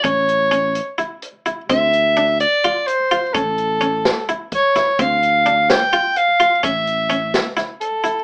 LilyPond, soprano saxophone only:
\new Staff \with { instrumentName = "Soprano saxophone" } { \time 7/8 \key d \minor \tempo 4 = 128 cis''2 r4. | e''4. d''4 c''4 | a'2 r8 cis''4 | f''4. g''4 f''4 |
e''2 r8 a'4 | }